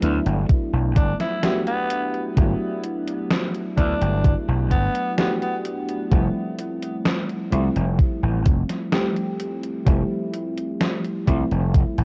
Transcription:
Already playing: A3 B3 D4 E4
0.00 D2 F#3 A3 B3 D4 E4, closed hi-hat
0.26 G1, closed hi-hat
0.49 kick, closed hi-hat
0.73 B1
0.96 G1 D4, kick, closed hi-hat
1.20 E4, snare, closed hi-hat
1.43 A3 B3 D4 F#4 G4, snare, closed hi-hat
1.67 B3, closed hi-hat
1.90 closed hi-hat
2.14 closed hi-hat
2.36 G1 F#3 A3 B3 D4 E4, kick, closed hi-hat
2.84 closed hi-hat
3.07 closed hi-hat
3.30 snare, closed hi-hat
3.54 closed hi-hat
3.76 D2 F#3 A3 B3 D4 E4, kick, closed hi-hat
4.01 G1, closed hi-hat
4.24 kick, closed hi-hat
4.48 B1
4.71 G1 B3, kick, closed hi-hat
4.95 closed hi-hat
5.17 A3 B3 D4 F#4 G4, snare, closed hi-hat
5.42 B3, closed hi-hat
5.65 closed hi-hat
5.89 closed hi-hat
6.10 F1 F3 G3 A3 C4 E4, kick, closed hi-hat
6.59 closed hi-hat
6.83 closed hi-hat
7.06 snare, closed hi-hat
7.29 closed hi-hat
7.51 C2 F3 G3 A3 C4 E4, closed hi-hat
7.76 F1, closed hi-hat
7.99 kick, closed hi-hat
8.23 A1
8.46 F1, kick, closed hi-hat
8.70 snare, closed hi-hat
8.92 F3 G3 A3 C4 G4, snare, closed hi-hat
9.17 closed hi-hat
9.40 closed hi-hat
9.63 closed hi-hat
9.85 F1 F3 G3 A3 C4 E4, kick, closed hi-hat
10.33 closed hi-hat
10.57 closed hi-hat
10.81 snare, closed hi-hat
11.05 closed hi-hat
11.26 C2 F3 G3 A3 C4 E4, kick, closed hi-hat
11.51 F1, closed hi-hat
11.74 kick, closed hi-hat
11.98 A1, closed hi-hat

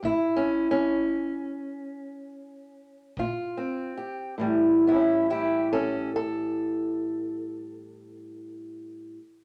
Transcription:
0.03 A2 E4, kick
0.36 C#4
0.71 C#4
3.17 A#2 F4, kick
3.57 C4
3.97 G4
4.38 A2 E3 G3
4.87 C#4 E4
5.30 E4 G4
5.73 C#4 A4
6.16 A4

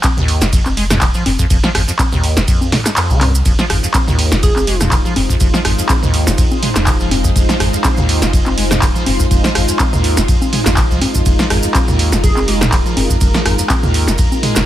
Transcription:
0.03 kick, clap, ride, high conga, maracas
0.17 D#2, mid tom, maracas
0.28 open hi-hat
0.41 F1 D#3, snare, maracas
0.53 F2, kick, ride, maracas
0.66 F1, clap, high conga, maracas
0.77 G#3, open hi-hat
0.90 F2, cross-stick, snare, mid tom, maracas
1.01 D#1 G#3, kick, clap, open hi-hat, ride, maracas
1.14 F3, maracas
1.26 F1 G2, open hi-hat, high conga
1.39 F2, kick, maracas
1.50 F1 F2, kick, ride, maracas
1.63 F3, snare, maracas
1.75 G#1 F2, cross-stick, open hi-hat
1.88 F2, maracas
1.99 kick, clap, ride, high conga, maracas
2.12 D#2, mid tom, maracas
2.24 open hi-hat
2.37 F1 D#3, snare, maracas
2.48 F2, kick, ride, maracas
2.61 high conga, maracas
2.72 F3, snare, mid tom, open hi-hat
2.85 cross-stick, snare, clap, maracas
2.97 F2, clap, open hi-hat, ride, maracas
3.10 C2 D#3, maracas
3.21 F2, clap, open hi-hat, high conga
3.35 maracas
3.45 F1 F2 G#3 D#4 F4 C5, kick, ride, maracas
3.59 F3, snare, maracas
3.70 G#1 F2, cross-stick, open hi-hat
3.83 F2, maracas
3.94 kick, clap, ride, high conga, maracas
4.08 D#2, mid tom, maracas
4.19 open hi-hat
4.32 F1 D#3, snare, maracas
4.43 F2 G#4, kick, ride, maracas
4.56 F1, clap, high conga, maracas
4.67 G#3, open hi-hat
4.81 F2, cross-stick, snare, mid tom, maracas
4.92 D#1 G#3, kick, clap, open hi-hat, ride, maracas
5.05 F3, maracas
5.16 F1 G2, open hi-hat, high conga
5.29 F2, kick, maracas
5.40 F1 F2, kick, ride, maracas
5.54 F3, snare, maracas
5.65 G#1 F2, cross-stick, open hi-hat
5.78 F2, maracas
5.89 kick, clap, ride, high conga, maracas
6.03 D#2, mid tom, maracas
6.14 open hi-hat
6.27 F1 D#3, snare, maracas
6.38 F2, kick, ride, maracas
6.51 high conga, maracas
6.63 G#3, mid tom, open hi-hat
6.76 F1 F2, cross-stick, snare, clap, maracas
6.87 G#3, kick, clap, open hi-hat, ride, maracas
7.00 F3, maracas
7.11 G2, open hi-hat, high conga
7.24 F2, kick, maracas
7.36 F1 F2, kick, ride, maracas
7.49 F3, snare, maracas
7.60 G#1 F2, cross-stick, open hi-hat
7.73 F2, maracas
7.84 kick, clap, ride, high conga, maracas
7.97 D#2, mid tom, maracas
8.09 open hi-hat
8.22 F1 D#3, snare, maracas
8.33 F2, kick, ride, maracas
8.46 F1, clap, high conga, maracas
8.58 G#3, open hi-hat
8.71 F2, cross-stick, snare, mid tom, maracas
8.82 D#1 G#3, kick, clap, open hi-hat, ride, maracas
8.95 F3, maracas
9.06 F1 G2, open hi-hat, high conga
9.20 F2, kick, maracas
9.31 F1 F2, kick, ride, maracas
9.44 F3, snare, maracas
9.55 G#1 F2, cross-stick, open hi-hat
9.68 F2, maracas
9.79 kick, clap, ride, high conga, maracas
9.93 D#2, mid tom, maracas
10.04 open hi-hat
10.17 F1 D#3, snare, maracas
10.28 F2, kick, ride, maracas
10.42 high conga, maracas
10.53 G#3, mid tom, open hi-hat
10.66 G#1 F2, cross-stick, snare, clap, maracas
10.77 G#3, kick, clap, open hi-hat, ride, maracas
10.91 C2 F3, maracas
11.01 G2, open hi-hat, high conga
11.15 F2, kick, maracas
11.26 F1 F2 A#4, kick, ride, maracas
11.39 F3, snare, maracas
11.50 G#1 F2, cross-stick, open hi-hat
11.63 F2, maracas
11.74 kick, clap, ride, high conga, maracas
11.88 D#2, mid tom, maracas
11.99 open hi-hat
12.12 F1 D#3, snare, maracas
12.23 F2 G#4, kick, ride, maracas
12.37 F1, clap, high conga, maracas
12.48 G#3, open hi-hat
12.61 G2, cross-stick, snare, mid tom, maracas
12.72 D#1 G#3, kick, clap, open hi-hat, ride, maracas
12.85 F3, maracas
12.97 F1 G2, open hi-hat, high conga
13.10 F2, kick, maracas
13.21 F1 F2, kick, ride, maracas
13.34 F3, snare, maracas
13.45 G#1 F2, cross-stick, open hi-hat
13.59 F2, maracas
13.70 kick, clap, ride, high conga, maracas
13.83 D#2, mid tom, maracas
13.94 open hi-hat
14.07 F1 D#3, snare, maracas
14.18 F2, kick, ride, maracas
14.32 high conga, maracas
14.43 G#3, mid tom, open hi-hat
14.56 F1 G2, cross-stick, snare, clap, maracas

